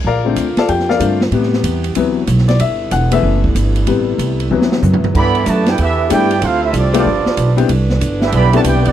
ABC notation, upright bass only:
X:1
M:4/4
L:1/8
Q:"Swing" 1/4=188
K:G
V:1 name="Upright bass" clef=bass
_B,,,2 D,, z =F,,2 G,,2 | A,,2 E,,2 D,,2 B,,,2 | G,,,2 E,,,2 F,,,2 G,,,2 | A,,,2 C,,2 D,,2 F,, z |
G,,2 F,,2 E,,2 G,,2 | D,,2 C,,2 G,,, z B,,,2 | C,,2 G,,,2 B,,,2 (3C,, B,,, G,,, |]